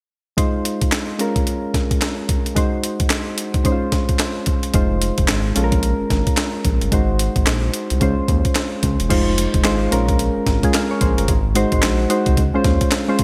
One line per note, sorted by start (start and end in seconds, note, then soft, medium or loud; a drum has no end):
0.37 1.17 G#3 medium
0.37 1.19 D#4 medium
0.37 1.19 F4 medium
0.37 1.20 C5 medium
0.37 kick loud
0.37 closed hi-hat medium
0.65 closed hi-hat medium
0.81 kick medium
0.81 closed hi-hat soft
0.92 snare loud
0.92 clap medium
0.92 closed hi-hat medium
1.19 2.53 G#3 medium
1.19 2.53 C#4 medium
1.19 2.53 F4 medium
1.19 2.54 A#4 medium
1.19 closed hi-hat medium
1.36 kick medium
1.36 closed hi-hat soft
1.47 closed hi-hat medium
1.74 kick medium
1.74 snare medium
1.74 closed hi-hat medium
1.91 kick medium
1.91 closed hi-hat soft
2.02 snare medium
2.02 clap medium
2.02 closed hi-hat medium
2.29 kick loud
2.29 closed hi-hat medium
2.46 closed hi-hat soft
2.55 3.62 G#3 medium
2.55 3.63 D#4 medium
2.55 3.63 F#4 medium
2.55 3.64 C5 medium
2.55 kick loud
2.55 closed hi-hat medium
2.84 closed hi-hat medium
3.00 kick medium
3.00 closed hi-hat soft
3.10 snare loud
3.10 clap medium
3.10 closed hi-hat medium
3.38 closed hi-hat medium
3.54 kick medium
3.54 closed hi-hat soft
3.64 4.71 G#3 medium
3.64 4.72 C#4 medium
3.64 3.73 D#4 medium
3.64 4.73 C5 medium
3.64 kick medium
3.64 closed hi-hat medium
3.72 4.74 F4 medium
3.92 kick medium
3.92 snare medium
3.92 closed hi-hat medium
4.09 kick medium
4.09 closed hi-hat soft
4.19 snare loud
4.19 clap medium
4.19 closed hi-hat medium
4.46 kick medium
4.46 closed hi-hat medium
4.63 closed hi-hat soft
4.74 5.12 F1 loud
4.74 5.54 G#3 medium
4.74 5.56 D#4 medium
4.74 5.55 F4 medium
4.74 5.57 C5 medium
4.74 kick loud
4.74 closed hi-hat medium
5.02 closed hi-hat medium
5.18 5.27 F1 medium
5.18 kick medium
5.18 closed hi-hat soft
5.28 5.52 G#1 loud
5.28 snare loud
5.28 clap medium
5.28 closed hi-hat medium
5.55 5.94 A#1 loud
5.55 6.89 G#3 medium
5.55 6.89 C#4 medium
5.55 6.90 F4 medium
5.55 5.65 A4 medium
5.55 closed hi-hat medium
5.64 6.94 A#4 medium
5.72 kick medium
5.72 closed hi-hat soft
5.83 closed hi-hat medium
6.01 6.05 G#1 medium
6.10 6.25 G#1 medium
6.10 kick medium
6.10 snare medium
6.10 closed hi-hat medium
6.27 kick medium
6.27 closed hi-hat soft
6.37 snare loud
6.37 clap medium
6.37 closed hi-hat medium
6.65 6.79 A#1 loud
6.65 kick medium
6.65 closed hi-hat medium
6.81 6.91 G1 medium
6.81 closed hi-hat soft
6.91 7.29 G#1 loud
6.91 7.99 G#3 medium
6.91 7.99 D#4 medium
6.91 8.00 F#4 medium
6.91 8.00 C5 medium
6.91 kick loud
6.91 closed hi-hat medium
7.19 closed hi-hat medium
7.36 7.45 G#1 medium
7.36 kick medium
7.36 closed hi-hat soft
7.47 7.70 A#1 medium
7.47 snare loud
7.47 clap medium
7.47 closed hi-hat medium
7.74 closed hi-hat medium
7.90 8.00 C2 medium
7.90 closed hi-hat soft
8.00 8.15 C#2 loud
8.00 9.08 G#3 medium
8.00 9.08 C#4 medium
8.00 9.08 F4 medium
8.00 9.09 C5 medium
8.00 kick medium
8.00 closed hi-hat medium
8.19 8.23 D#2 soft
8.28 8.43 D#2 loud
8.28 kick medium
8.28 closed hi-hat medium
8.45 kick medium
8.45 closed hi-hat soft
8.55 snare loud
8.55 clap medium
8.55 closed hi-hat medium
8.83 8.97 C#2 loud
8.83 kick medium
8.83 closed hi-hat medium
9.00 9.09 E1 medium
9.00 closed hi-hat soft
9.09 9.48 F1 loud
9.09 9.57 G#3 medium
9.09 9.57 D#4 medium
9.09 9.57 F4 medium
9.09 9.58 C5 medium
9.09 kick loud
9.09 closed hi-hat medium
9.09 crash medium
9.38 closed hi-hat medium
9.54 9.64 F1 loud
9.54 kick medium
9.54 closed hi-hat soft
9.64 9.88 G#1 loud
9.64 9.90 G#3 loud
9.64 9.92 D#4 medium
9.64 9.91 F4 medium
9.64 9.92 C5 loud
9.64 snare loud
9.64 clap medium
9.64 closed hi-hat medium
9.91 10.30 A#1 loud
9.91 10.49 G#3 medium
9.91 10.49 C#4 medium
9.91 10.49 F4 medium
9.91 10.49 A#4 loud
9.91 closed hi-hat medium
10.08 kick medium
10.08 closed hi-hat soft
10.19 closed hi-hat medium
10.37 10.41 G#1 soft
10.47 10.61 G#1 medium
10.47 kick medium
10.47 snare medium
10.47 closed hi-hat medium
10.63 11.06 G#3 medium
10.63 11.06 C#4 medium
10.63 11.07 F4 medium
10.63 11.07 G#4 medium
10.63 kick medium
10.63 closed hi-hat medium
10.74 10.90 F5 medium
10.74 snare loud
10.74 clap medium
10.74 closed hi-hat medium
10.91 11.01 C#5 medium
11.01 11.16 A#1 loud
11.01 11.17 C5 medium
11.01 kick loud
11.01 closed hi-hat medium
11.18 11.27 G1 medium
11.18 11.44 A#4 medium
11.18 closed hi-hat soft
11.28 11.66 G#1 loud
11.28 kick loud
11.28 closed hi-hat medium
11.55 12.03 G#3 medium
11.55 12.03 D#4 medium
11.55 12.03 F#4 medium
11.55 12.03 C5 loud
11.55 closed hi-hat medium
11.72 11.82 G#1 medium
11.72 kick medium
11.72 closed hi-hat soft
11.83 12.07 A#1 medium
11.83 snare loud
11.83 clap medium
11.83 closed hi-hat medium
12.09 12.37 G#3 medium
12.09 12.37 D#4 medium
12.09 12.38 F#4 medium
12.09 12.38 C5 medium
12.09 closed hi-hat medium
12.26 12.36 C2 medium
12.26 kick medium
12.26 closed hi-hat soft
12.37 12.52 C#2 loud
12.37 kick medium
12.37 closed hi-hat medium
12.54 12.59 D#2 soft
12.54 12.97 G#3 medium
12.54 12.97 C#4 medium
12.54 12.98 F4 medium
12.54 12.98 C5 loud
12.64 12.79 D#2 loud
12.64 kick medium
12.64 snare medium
12.64 closed hi-hat medium
12.81 kick medium
12.81 closed hi-hat medium
12.91 snare medium
12.91 clap medium
12.91 closed hi-hat medium
13.08 13.24 G#3 medium
13.08 13.24 C#4 medium
13.08 13.24 F4 medium
13.08 13.24 C5 loud
13.19 13.24 C#2 loud
13.19 kick medium
13.19 closed hi-hat medium